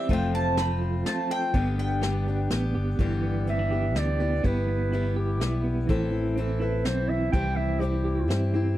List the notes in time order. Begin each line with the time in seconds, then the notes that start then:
Already playing: C4 E4 G4
0.09 F1 F2 C3 F3 A3 C4 F4 A4 G5, kick, closed hi-hat
0.34 C4 A5
0.57 F3 A3 C4 F4 A4 B5, snare, closed hi-hat
0.81 F4
1.05 F3 A3 C4 F4 A5, snare, closed hi-hat
1.30 A4 G5
1.54 G1 G2 D3 G3 B3 D4 G4, kick, closed hi-hat
1.78 B3 G5
2.01 G3 B3 D4 G4, snare, closed hi-hat
2.27 G3 B3 D4 G4
2.50 A1 G3 B3 D4 G4, snare, closed hi-hat
2.75 G1 G4
2.99 G1 G2 D3 E3 G3 B3 G4, kick, closed hi-hat
3.23 B3
3.47 E3 G3 B3 C4 G4 E5, closed hi-hat
3.59 D4
3.71 E3 G3 B3 G4
3.95 D2 E3 G3 B3 D4 G4 D5, snare, closed hi-hat
4.20 E3 G3 B3 G4
4.43 G1 G3 B3 E4 G4 B4, kick, closed hi-hat
4.67 B3
4.92 G3 B3 E4 G4, closed hi-hat
5.16 G4
5.40 B1 G3 B3 E4 G4, snare, closed hi-hat
5.64 B3
5.87 A1 A2 E3 C4 E4 A4, kick, closed hi-hat
6.12 E3
6.36 E3 C4 E4 A4, closed hi-hat
6.60 C4 E4 A4 B4
6.85 B1 E3 C4 E4 A4 C5, snare, closed hi-hat
7.09 E3 E5
7.32 C2 C3 E3 G3 C4 E4 G4 G5, kick, closed hi-hat
7.56 C4 E5
7.80 G3 C4 E4 G4, closed hi-hat
8.04 G4
8.28 G2 G3 C4 E4 G4, snare, closed hi-hat
8.54 C4 E4 G4